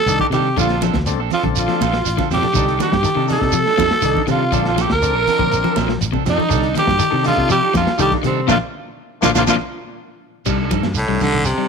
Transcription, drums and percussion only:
0.07 closed hi-hat, shekere
0.20 kick, high conga
0.32 closed hi-hat, low conga, shekere
0.57 kick, closed hi-hat, low conga, shekere
0.69 snare, closed hi-hat
0.81 snare, closed hi-hat, high conga, shekere
0.94 kick, snare, closed hi-hat, high conga
1.06 snare, closed hi-hat, shekere
1.30 open hi-hat, high conga, shekere
1.43 kick, closed hi-hat, high conga
1.56 closed hi-hat, shekere
1.68 snare, closed hi-hat
1.81 kick, snare, closed hi-hat, high conga, shekere
1.93 snare, closed hi-hat
2.05 closed hi-hat, shekere
2.18 kick, snare, high conga
2.31 snare, open hi-hat, low conga, shekere
2.43 low conga
2.54 kick, closed hi-hat, low conga, shekere
2.68 closed hi-hat
2.80 snare, closed hi-hat, high conga, shekere
2.92 kick, snare, high conga
3.04 closed hi-hat, shekere
3.28 open hi-hat, high conga, shekere
3.42 kick, snare, low conga
3.52 closed hi-hat, shekere
3.66 snare
3.78 kick, snare, closed hi-hat, high conga, shekere
3.91 snare, closed hi-hat
4.02 closed hi-hat, shekere
4.15 kick, high conga
4.27 closed hi-hat, low conga, shekere
4.52 kick, closed hi-hat, low conga, shekere
4.65 snare, closed hi-hat
4.78 snare, closed hi-hat, high conga, shekere
4.90 kick, snare, closed hi-hat
5.02 closed hi-hat, shekere
5.27 open hi-hat, high conga, shekere
5.39 kick, closed hi-hat, high conga, low conga
5.52 closed hi-hat, shekere
5.64 closed hi-hat, high conga
5.76 kick, snare, closed hi-hat, high conga, shekere
5.89 snare, closed hi-hat
6.01 closed hi-hat, shekere
6.13 kick, high conga
6.26 snare, closed hi-hat, low conga, shekere
6.40 high conga
6.50 kick, closed hi-hat, low conga, shekere
6.63 closed hi-hat
6.75 snare, closed hi-hat, high conga, shekere
6.87 kick, snare, high conga
6.99 closed hi-hat, shekere
7.24 open hi-hat, high conga, shekere
7.37 kick
7.50 closed hi-hat, shekere
7.74 kick, snare, closed hi-hat, high conga, shekere
7.87 snare, closed hi-hat
7.99 closed hi-hat, shekere
8.12 kick, snare, high conga
8.23 closed hi-hat, low conga, shekere
8.49 kick, snare, high conga, shekere
9.23 kick, snare, high conga, shekere
9.35 kick, snare, high conga, shekere
9.47 kick, snare, high conga, shekere
10.46 kick, crash, low conga, shekere
10.71 kick, closed hi-hat, high conga, shekere
10.83 snare, high conga
10.94 closed hi-hat, shekere
11.20 closed hi-hat, high conga, shekere
11.34 low conga
11.45 closed hi-hat, shekere

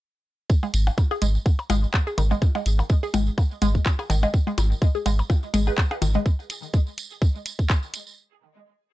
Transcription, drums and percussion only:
0.49 kick, tambourine
0.63 tambourine, percussion blips
0.74 closed hi-hat, tambourine
0.87 tambourine, percussion blips
0.97 kick, tambourine, percussion blips
1.11 tambourine, percussion blips
1.22 closed hi-hat, tambourine
1.35 tambourine
1.46 kick, tambourine, percussion blips
1.59 tambourine, percussion blips
1.70 closed hi-hat, tambourine, percussion blips
1.84 tambourine
1.94 kick, clap, tambourine, percussion blips
2.07 tambourine
2.18 closed hi-hat, tambourine, percussion blips
2.31 tambourine, percussion blips
2.42 kick, tambourine, percussion blips
2.55 tambourine, percussion blips
2.66 closed hi-hat, tambourine
2.79 tambourine, percussion blips
2.89 kick, tambourine
3.04 tambourine
3.14 closed hi-hat, tambourine, percussion blips
3.27 tambourine
3.38 kick, tambourine, percussion blips
3.51 tambourine
3.62 closed hi-hat, tambourine, percussion blips
3.75 kick, tambourine
3.86 kick, clap, tambourine, percussion blips
3.99 tambourine, percussion blips
4.10 closed hi-hat, tambourine, percussion blips
4.23 tambourine, percussion blips
4.34 kick, tambourine
4.47 tambourine, percussion blips
4.58 closed hi-hat, tambourine, percussion blips
4.72 tambourine
4.82 kick, tambourine, percussion blips
4.95 tambourine
5.06 closed hi-hat, tambourine, percussion blips
5.19 tambourine, percussion blips
5.30 kick, tambourine, percussion blips
5.43 tambourine
5.54 closed hi-hat, tambourine
5.67 tambourine, percussion blips
5.78 kick, clap, tambourine, percussion blips
5.91 tambourine, percussion blips
6.02 closed hi-hat, tambourine, percussion blips
6.14 tambourine, percussion blips
6.26 kick, tambourine
6.40 tambourine
6.50 closed hi-hat, tambourine
6.63 tambourine
6.73 kick, tambourine
6.87 tambourine
6.98 closed hi-hat, tambourine
7.10 tambourine
7.22 kick, tambourine
7.35 tambourine
7.46 closed hi-hat, tambourine
7.59 kick, tambourine
7.69 kick, clap, tambourine
7.83 tambourine
7.94 closed hi-hat, tambourine
8.07 tambourine

